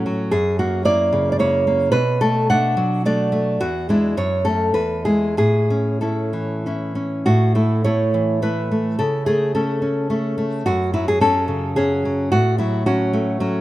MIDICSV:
0, 0, Header, 1, 2, 480
1, 0, Start_track
1, 0, Key_signature, 3, "major"
1, 0, Tempo, 542495
1, 287, Time_signature, 3, 2, 24, 8
1, 2691, Tempo, 565504
1, 3651, Tempo, 578035
1, 4131, Tempo, 632911
1, 6051, Tempo, 571429
1, 7011, Tempo, 558659
1, 9891, Tempo, 540541
1, 11518, End_track
2, 0, Start_track
2, 0, Title_t, "Nylon-string guitar"
2, 0, Program_c, 0, 24
2, 0, Note_on_c, 0, 45, 54
2, 0, Note_on_c, 0, 57, 46
2, 0, Note_on_c, 0, 61, 43
2, 51, Note_on_c, 0, 54, 42
2, 247, Note_off_c, 0, 45, 0
2, 257, Note_off_c, 0, 61, 0
2, 278, Note_on_c, 0, 68, 77
2, 282, Note_on_c, 0, 42, 55
2, 287, Note_off_c, 0, 54, 0
2, 288, Note_off_c, 0, 57, 0
2, 510, Note_off_c, 0, 68, 0
2, 522, Note_on_c, 0, 58, 44
2, 523, Note_on_c, 0, 66, 58
2, 741, Note_off_c, 0, 58, 0
2, 750, Note_on_c, 0, 58, 40
2, 752, Note_off_c, 0, 66, 0
2, 754, Note_on_c, 0, 64, 47
2, 755, Note_on_c, 0, 74, 74
2, 996, Note_on_c, 0, 49, 49
2, 1157, Note_off_c, 0, 74, 0
2, 1168, Note_on_c, 0, 74, 53
2, 1222, Note_off_c, 0, 58, 0
2, 1226, Note_off_c, 0, 64, 0
2, 1232, Note_on_c, 0, 58, 39
2, 1233, Note_off_c, 0, 74, 0
2, 1236, Note_on_c, 0, 73, 61
2, 1237, Note_on_c, 0, 64, 49
2, 1467, Note_off_c, 0, 58, 0
2, 1478, Note_on_c, 0, 58, 39
2, 1681, Note_off_c, 0, 64, 0
2, 1683, Note_off_c, 0, 42, 0
2, 1692, Note_off_c, 0, 73, 0
2, 1695, Note_on_c, 0, 71, 75
2, 1700, Note_on_c, 0, 47, 54
2, 1716, Note_off_c, 0, 49, 0
2, 1720, Note_off_c, 0, 58, 0
2, 1943, Note_off_c, 0, 71, 0
2, 1954, Note_on_c, 0, 69, 75
2, 1960, Note_on_c, 0, 57, 45
2, 2192, Note_off_c, 0, 69, 0
2, 2200, Note_off_c, 0, 57, 0
2, 2210, Note_on_c, 0, 57, 42
2, 2210, Note_on_c, 0, 78, 74
2, 2218, Note_on_c, 0, 62, 48
2, 2446, Note_off_c, 0, 57, 0
2, 2449, Note_on_c, 0, 54, 45
2, 2672, Note_off_c, 0, 78, 0
2, 2698, Note_off_c, 0, 62, 0
2, 2701, Note_on_c, 0, 57, 42
2, 2706, Note_on_c, 0, 74, 70
2, 2710, Note_on_c, 0, 62, 44
2, 2918, Note_off_c, 0, 57, 0
2, 2928, Note_on_c, 0, 57, 45
2, 3130, Note_off_c, 0, 47, 0
2, 3149, Note_off_c, 0, 62, 0
2, 3161, Note_off_c, 0, 74, 0
2, 3169, Note_on_c, 0, 66, 78
2, 3171, Note_on_c, 0, 40, 57
2, 3172, Note_off_c, 0, 57, 0
2, 3174, Note_off_c, 0, 54, 0
2, 3400, Note_off_c, 0, 66, 0
2, 3411, Note_on_c, 0, 56, 40
2, 3419, Note_on_c, 0, 62, 48
2, 3419, Note_on_c, 0, 64, 53
2, 3627, Note_off_c, 0, 56, 0
2, 3632, Note_off_c, 0, 62, 0
2, 3636, Note_off_c, 0, 40, 0
2, 3645, Note_off_c, 0, 64, 0
2, 3651, Note_on_c, 0, 42, 52
2, 3655, Note_on_c, 0, 73, 64
2, 3879, Note_on_c, 0, 69, 61
2, 3880, Note_on_c, 0, 57, 42
2, 3881, Note_off_c, 0, 73, 0
2, 3882, Note_on_c, 0, 61, 42
2, 4102, Note_off_c, 0, 57, 0
2, 4103, Note_off_c, 0, 61, 0
2, 4116, Note_off_c, 0, 69, 0
2, 4117, Note_off_c, 0, 42, 0
2, 4121, Note_on_c, 0, 71, 63
2, 4124, Note_on_c, 0, 40, 51
2, 4347, Note_off_c, 0, 71, 0
2, 4358, Note_on_c, 0, 68, 58
2, 4362, Note_on_c, 0, 56, 36
2, 4365, Note_on_c, 0, 64, 39
2, 4581, Note_off_c, 0, 56, 0
2, 4582, Note_off_c, 0, 64, 0
2, 4587, Note_off_c, 0, 40, 0
2, 4593, Note_off_c, 0, 68, 0
2, 4603, Note_on_c, 0, 45, 44
2, 4609, Note_on_c, 0, 68, 68
2, 4854, Note_on_c, 0, 61, 38
2, 5081, Note_off_c, 0, 61, 0
2, 5082, Note_off_c, 0, 68, 0
2, 5086, Note_on_c, 0, 69, 45
2, 5090, Note_on_c, 0, 61, 36
2, 5097, Note_on_c, 0, 64, 35
2, 5330, Note_on_c, 0, 52, 36
2, 5572, Note_off_c, 0, 61, 0
2, 5575, Note_off_c, 0, 64, 0
2, 5580, Note_on_c, 0, 61, 37
2, 5586, Note_on_c, 0, 64, 40
2, 5783, Note_off_c, 0, 69, 0
2, 5792, Note_off_c, 0, 61, 0
2, 5801, Note_on_c, 0, 61, 37
2, 6020, Note_off_c, 0, 45, 0
2, 6022, Note_off_c, 0, 64, 0
2, 6032, Note_on_c, 0, 66, 62
2, 6035, Note_on_c, 0, 45, 53
2, 6041, Note_off_c, 0, 61, 0
2, 6044, Note_off_c, 0, 52, 0
2, 6273, Note_off_c, 0, 66, 0
2, 6276, Note_on_c, 0, 57, 44
2, 6279, Note_on_c, 0, 64, 55
2, 6516, Note_off_c, 0, 64, 0
2, 6522, Note_off_c, 0, 57, 0
2, 6523, Note_on_c, 0, 73, 67
2, 6532, Note_on_c, 0, 57, 38
2, 6533, Note_on_c, 0, 64, 38
2, 6773, Note_on_c, 0, 52, 38
2, 6987, Note_off_c, 0, 73, 0
2, 6999, Note_off_c, 0, 57, 0
2, 7001, Note_off_c, 0, 64, 0
2, 7008, Note_on_c, 0, 57, 36
2, 7011, Note_on_c, 0, 71, 58
2, 7012, Note_on_c, 0, 64, 39
2, 7250, Note_off_c, 0, 57, 0
2, 7260, Note_on_c, 0, 57, 36
2, 7453, Note_off_c, 0, 45, 0
2, 7462, Note_off_c, 0, 64, 0
2, 7475, Note_off_c, 0, 71, 0
2, 7494, Note_on_c, 0, 69, 64
2, 7497, Note_off_c, 0, 52, 0
2, 7500, Note_off_c, 0, 57, 0
2, 7500, Note_on_c, 0, 49, 49
2, 7727, Note_off_c, 0, 69, 0
2, 7731, Note_on_c, 0, 68, 68
2, 7740, Note_on_c, 0, 57, 42
2, 7963, Note_off_c, 0, 68, 0
2, 7965, Note_off_c, 0, 57, 0
2, 7974, Note_on_c, 0, 57, 35
2, 7975, Note_on_c, 0, 69, 51
2, 7977, Note_on_c, 0, 61, 40
2, 8198, Note_off_c, 0, 61, 0
2, 8208, Note_on_c, 0, 61, 38
2, 8439, Note_off_c, 0, 57, 0
2, 8440, Note_off_c, 0, 61, 0
2, 8449, Note_on_c, 0, 57, 36
2, 8452, Note_on_c, 0, 61, 39
2, 8665, Note_off_c, 0, 69, 0
2, 8677, Note_off_c, 0, 57, 0
2, 8688, Note_on_c, 0, 57, 42
2, 8895, Note_off_c, 0, 61, 0
2, 8899, Note_off_c, 0, 49, 0
2, 8928, Note_off_c, 0, 57, 0
2, 8930, Note_on_c, 0, 66, 68
2, 8934, Note_on_c, 0, 42, 56
2, 9156, Note_off_c, 0, 66, 0
2, 9168, Note_on_c, 0, 54, 40
2, 9169, Note_on_c, 0, 64, 57
2, 9286, Note_off_c, 0, 64, 0
2, 9293, Note_on_c, 0, 68, 65
2, 9392, Note_off_c, 0, 54, 0
2, 9400, Note_on_c, 0, 54, 41
2, 9404, Note_off_c, 0, 68, 0
2, 9407, Note_on_c, 0, 61, 45
2, 9407, Note_on_c, 0, 69, 67
2, 9635, Note_on_c, 0, 49, 45
2, 9868, Note_off_c, 0, 54, 0
2, 9870, Note_off_c, 0, 69, 0
2, 9877, Note_on_c, 0, 54, 42
2, 9878, Note_on_c, 0, 68, 65
2, 9879, Note_off_c, 0, 61, 0
2, 9889, Note_on_c, 0, 61, 45
2, 10126, Note_off_c, 0, 54, 0
2, 10136, Note_on_c, 0, 54, 41
2, 10340, Note_off_c, 0, 61, 0
2, 10342, Note_off_c, 0, 42, 0
2, 10349, Note_off_c, 0, 68, 0
2, 10369, Note_off_c, 0, 49, 0
2, 10370, Note_on_c, 0, 66, 73
2, 10377, Note_off_c, 0, 54, 0
2, 10378, Note_on_c, 0, 45, 58
2, 10604, Note_off_c, 0, 66, 0
2, 10608, Note_on_c, 0, 64, 63
2, 10618, Note_on_c, 0, 54, 43
2, 10842, Note_off_c, 0, 64, 0
2, 10844, Note_off_c, 0, 54, 0
2, 10854, Note_on_c, 0, 54, 42
2, 10855, Note_on_c, 0, 66, 58
2, 10859, Note_on_c, 0, 61, 48
2, 11096, Note_on_c, 0, 57, 45
2, 11324, Note_off_c, 0, 54, 0
2, 11325, Note_off_c, 0, 61, 0
2, 11335, Note_on_c, 0, 54, 45
2, 11337, Note_on_c, 0, 61, 47
2, 11518, Note_off_c, 0, 45, 0
2, 11518, Note_off_c, 0, 54, 0
2, 11518, Note_off_c, 0, 57, 0
2, 11518, Note_off_c, 0, 61, 0
2, 11518, Note_off_c, 0, 66, 0
2, 11518, End_track
0, 0, End_of_file